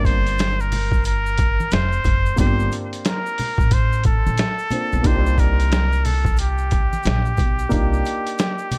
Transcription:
Already playing: G1 A#3 C4 D4 F4 A#4
0.05 C5, kick, closed hi-hat, maracas
0.27 closed hi-hat, maracas
0.39 snare, closed hi-hat, maracas
0.60 A#4, maracas
0.72 open hi-hat, low conga, maracas
0.92 kick, maracas
1.04 A#4, closed hi-hat, maracas
1.26 maracas
1.38 kick, closed hi-hat, maracas
1.60 high conga, maracas
1.71 F1 C5, snare, closed hi-hat, maracas
1.92 maracas
2.04 F#1, kick, closed hi-hat, low conga, maracas
2.26 maracas
2.36 G1 A#3 C4 D4 F4 C5, kick, closed hi-hat, maracas
2.40 G4
2.60 maracas
2.72 closed hi-hat, maracas
2.93 closed hi-hat, maracas
3.05 A#4, snare, closed hi-hat, maracas
3.26 maracas
3.38 open hi-hat, low conga, maracas
3.58 A1, kick, maracas
3.71 C5, kick, closed hi-hat, maracas
3.93 maracas
4.04 A4, kick, closed hi-hat, maracas
4.26 A#1, high conga, maracas
4.37 snare, closed hi-hat, maracas
4.59 maracas
4.71 A#3 C4 D4 F4 C5, closed hi-hat, low conga, maracas
4.92 B1, maracas
5.03 C2 A#3 D4 D#4 F4 C5, kick, closed hi-hat, maracas
5.07 G4
5.26 maracas
5.38 A#4, kick, closed hi-hat, maracas
5.60 closed hi-hat, maracas
5.72 snare, closed hi-hat, maracas
5.92 maracas
6.05 A4, open hi-hat, low conga, maracas
6.25 kick, maracas
6.37 G4, closed hi-hat, maracas
6.58 maracas
6.71 kick, closed hi-hat, maracas
6.93 high conga, maracas
7.03 A#1, closed hi-hat, maracas
7.07 snare
7.25 maracas
7.37 B1, kick, closed hi-hat, low conga, maracas
7.59 maracas
7.69 C2 A#3 D4 D#4 F4 G4, kick, closed hi-hat, maracas
7.93 maracas
8.05 closed hi-hat, maracas
8.26 closed hi-hat, maracas
8.38 snare, closed hi-hat, maracas
8.58 maracas
8.71 closed hi-hat, low conga, maracas

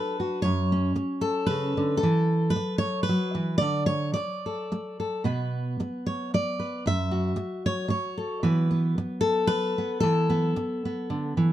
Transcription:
Already playing: D4 A4 B4
0.20 F#4
0.42 F#2 C#5
0.72 C#4
0.96 muted steel-string acoustic guitar stroke
1.21 A4
1.47 C#3 B4
1.77 D3
1.97 A4
2.03 E3
2.50 B4
2.56 muted steel-string acoustic guitar stroke
2.78 C#5
3.03 B4
3.09 F#3
3.35 E3
3.58 D3 D5
3.86 C#5
4.14 D5, muted steel-string acoustic guitar stroke
4.46 A4
4.72 muted steel-string acoustic guitar stroke
5.00 A4
5.24 B2 B3 B4
5.80 muted steel-string acoustic guitar stroke
6.06 C#5
6.34 D5, muted steel-string acoustic guitar stroke
6.59 B4
6.86 F#2 E5
7.11 F#4
7.36 muted steel-string acoustic guitar stroke
7.66 C#5
7.88 C#5, muted steel-string acoustic guitar stroke
8.18 A4
8.43 E3 B3 B4
8.71 B3
8.98 muted steel-string acoustic guitar stroke
9.21 A4
9.47 B4, muted steel-string acoustic guitar stroke
9.78 B3
10.00 E3 A4
10.30 B3
10.56 muted steel-string acoustic guitar stroke
10.85 B3
11.10 D3
11.37 E3

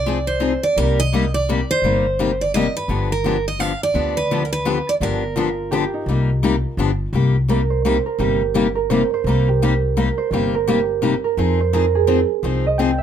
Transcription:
Already playing: C2 D5
0.06 F3 C4 D#4 G#4
0.27 C5
0.40 F3 C4 D#4 G#4
0.63 D5
0.77 C2 C3 G3 A#3 D#4 G4 A#4
1.00 D#5
1.13 C3 G3 A#3 D#4 G4
1.34 D5
1.49 C3 G3 A#3 D#4 G4
1.71 C5
1.82 G1 C3 G3 A#3 D#4 G4
2.19 C3 G3 A#3 D#4 G4
2.41 D5
2.54 C3 G3 A#3 D#4 G4 D#5
2.77 B4
2.88 G1 D3 F3 B3 D4 G4
3.12 A#4
3.24 D3 F3 B3 D4 G4
3.48 D#5
3.59 D3 F3 B3 D4 G4 F5
3.83 D5
3.94 D2 D3 F3 B3 D4 G4
4.17 B4
4.31 D3 F3 B3 D4 G4
4.45 A#4
4.53 B4
4.65 D3 F3 B3 D4 G4
4.89 D5
5.00 G1 D3 F3 B3 D4 G4 A#4
5.36 D3 F3 B3 D4 F4 G4
5.71 D3 F3 B3 D4 G4
5.94 D#4
6.06 C2 C3 G3 A#3 D#4 G4
6.43 C3 G3 A#3 D#4 G4
6.77 G1 D3 F3 B3 D4 G4
7.13 C2 C3 G3 A#3 D#4 G4
7.48 C3 G3 A#3 D#4 G4 A#4
7.70 C5
7.85 C3 G3 A#3 D#4 G4 C5
8.06 A#4
8.19 G1 C3 G3 A#3 D#4 G4
8.54 C3 G3 A#3 D#4 G4
8.75 A#4
8.90 C3 G3 A#3 D#4 G4 C5
9.14 C5
9.24 C2 C3 G3 A#3 A#4
9.28 D#4 G4
9.48 G4
9.62 C3 G3 A#3 D#4 G4
9.97 C3 G3 A#3 D#4 G4 A#4
10.18 C5
10.31 G1 C3 G3 A#3 D#4 G4 C5
10.55 A#4
10.67 C3 G3 A#3 D#4 G4
11.02 C3 G3 A#3 D#4 G4
11.24 A#4
11.37 F2 F3 C4 D#4 G#4 C5
11.61 C5
11.73 F3 C4 D#4 G#4 A#4
11.95 G#4
12.07 F3 C4 D#4 G#4
12.43 C2 F3 C4 D#4 G#4 C5
12.67 D#5
12.78 F3 C4 D#4 G#4 G5
12.98 E5

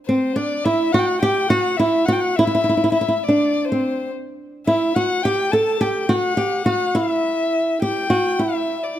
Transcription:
0.06 C4 C5
0.36 D4 D5
0.64 E4 E5
0.92 F#4 F#5
0.99 G5
1.06 F#5
1.21 G4 G5
1.49 F#4 F#5
1.77 E4 E5
2.06 F#4 F#5
2.12 G5
2.20 F#5
2.35 E4 E5
2.47 E4
2.55 E4
2.64 E4
2.69 E4
2.77 E4
2.84 E4
2.92 E4 E5
3.01 E4
3.08 E4
3.17 E5
3.23 D5
3.28 D4
3.65 C5
3.72 C4
4.66 E4 E5
4.95 F#4 F#5
5.24 G4 G5
5.52 A4 A5
5.81 G4 G5
6.03 G5
6.09 F#4 F#5
6.37 G4
6.66 F#4 F#5
6.95 E4 F5
7.11 E5
7.82 G4 G5
8.10 F#4
8.39 E4 E5
8.83 D5

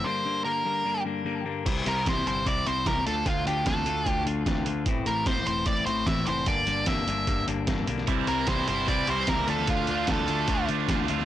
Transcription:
0.04 G2 D3 G3 A#3 D4 C5
0.25 G2 D3 G3 A#3 D4
0.45 G2 D3 G3 A#3 D4 A#4
0.65 G2 D3 G3 A#3 D4
0.85 G2 D3 G3 A#3 D4
1.05 G2 D3 G3 A#3 D4
1.25 G2 D3 G3 A#3 D4
1.45 G2 D3 G3 A#3 D4
1.65 C2 C3 G3 C4 E4, kick, closed hi-hat, crash
1.85 C2 C3 G3 C4 E4 A#4, closed hi-hat
2.06 C2 C3 G3 C4 E4 C5, kick, snare, closed hi-hat
2.26 G1 C3 G3 C4 E4 C5, closed hi-hat
2.46 C2 C3 G3 C4 E4 D5, kick, closed hi-hat
2.66 C2 C3 G3 C4 E4 C5, closed hi-hat
2.86 C2 C3 G3 C4 E4 A#4, kick, snare, closed hi-hat
3.06 D2 D3 A3 D4 F4 A4, closed hi-hat
3.26 D2 D3 A3 D4 F4, kick, closed hi-hat
3.46 D2 D3 A3 D4 F4 G4, closed hi-hat
3.66 D2 D3 A3 D4 F4 A4, kick, snare, closed hi-hat
3.85 D2 D3 A3 D4 F4, closed hi-hat
4.06 D2 D3 A3 D4 F4 G4, kick, closed hi-hat
4.25 D2 D3 A3 D4 F4, closed hi-hat
4.46 D2 D3 A3 D4 F4, kick, snare, closed hi-hat
4.65 D2 D3 A3 D4 F4, closed hi-hat
4.86 A1 A2 E3 A3 C4 E4, kick, closed hi-hat
5.06 A1 A2 E3 A3 C4 E4 A#4, closed hi-hat
5.26 A1 A2 E3 A3 C4 E4 C5, kick, snare, closed hi-hat
5.46 E1 A2 E3 A3 C4 E4 C5, closed hi-hat
5.66 A1 A2 E3 A3 C4 E4 D5, kick, closed hi-hat
5.86 A1 A2 E3 A3 C4 E4 C5, closed hi-hat
6.06 A1 A2 E3 A3 C4 E4 E5, kick, snare, closed hi-hat
6.26 F1 A2 E3 A3 C4 E4 C5, closed hi-hat
6.46 G1 G2 D3 G3 A#3 D4 D5, kick, closed hi-hat
6.67 G1 G2 D3 G3 A#3 D4, closed hi-hat
6.86 G1 G2 D3 G3 A#3 D4 E5, kick, snare, closed hi-hat
7.07 G1 G2 D3 G3 A#3 D4, closed hi-hat
7.27 G1 G2 D3 G3 A#3 D4, kick, closed hi-hat
7.47 G1 G2 D3 G3 A#3 D4, closed hi-hat
7.67 G1 G2 D3 G3 A#3 D4, kick, snare, closed hi-hat
7.87 B1 G2 D3 G3 A#3 D4, closed hi-hat
7.98 snare
8.07 C2 C3 E3 G3 C4 E4, kick, closed hi-hat
8.27 C2 C3 E3 G3 C4 E4 A#4, closed hi-hat
8.47 C2 C3 E3 G3 C4 E4 C5, kick, snare, closed hi-hat
8.68 G1 C3 E3 G3 C4 E4 C5, closed hi-hat
8.87 C2 C3 E3 G3 C4 E4 D5, kick, closed hi-hat
9.07 C2 C3 E3 G3 C4 E4 C5, closed hi-hat
9.27 C#2 C3 E3 G3 C4 E4 A#4, kick, snare, closed hi-hat
9.47 D2 D3 A3 D4 F4 A4, closed hi-hat
9.58 snare
9.67 D2 D3 A3 D4 F4, kick, closed hi-hat
9.87 D2 D3 A3 D4 F4, closed hi-hat
10.07 D2 D3 A3 D4 F4 A4, kick, snare, closed hi-hat
10.28 D2 D3 A3 D4 F4, closed hi-hat
10.48 D2 D3 A3 D4 F4, kick, closed hi-hat
10.68 D2 D3 A3 D4 F4, closed hi-hat
10.88 D2 D3 A3 D4 F4, kick, snare, closed hi-hat
11.08 D2 D3 A3 D4 F4, closed hi-hat
11.19 snare

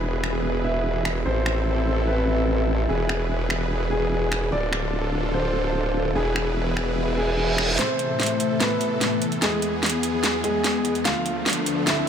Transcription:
Already playing: E1 E3 B3 D4 E4 G#4 B4
0.24 E5, finger snap
0.65 E5
1.05 finger snap
1.25 A1 C4 A4 C5
1.46 finger snap
1.54 A4
2.07 B4
2.89 E1 E3 B3 G#4 B4
3.09 finger snap
3.20 G#4
3.50 finger snap
3.91 G#4
4.32 finger snap
4.52 D1 D3 D4 F4 A4 D5
4.73 finger snap
4.81 A4
4.92 F5
5.34 C5
6.15 E1 E3 B3 E4 G#4 B4
6.30 G#4
6.36 finger snap
6.41 E5
6.77 finger snap
6.97 reverse cymbal
7.17 G#4
7.58 finger snap
7.78 A2 C3 E3 A3 C4 A4 C5, snare, closed hi-hat, riser
7.97 A4, closed hi-hat
8.20 snare, closed hi-hat
8.23 closed hi-hat
8.26 closed hi-hat
8.40 closed hi-hat
8.60 B3 B4, snare, closed hi-hat
8.81 closed hi-hat
9.01 snare, closed hi-hat
9.22 closed hi-hat
9.32 closed hi-hat
9.42 E2 G#3 B3 G#4, snare, closed hi-hat
9.53 G#4
9.62 closed hi-hat
9.83 snare, closed hi-hat
9.86 closed hi-hat
9.90 closed hi-hat
10.03 closed hi-hat
10.23 snare, closed hi-hat
10.44 G#3 G#4, closed hi-hat
10.64 snare, closed hi-hat
10.85 closed hi-hat
10.95 closed hi-hat
11.05 D2 D3 F3 A3 D4 F4 F5, snare, closed hi-hat
11.26 A4, closed hi-hat
11.46 snare, closed hi-hat
11.50 closed hi-hat
11.53 closed hi-hat
11.63 D5, closed hi-hat
11.87 E4 E5, snare, closed hi-hat

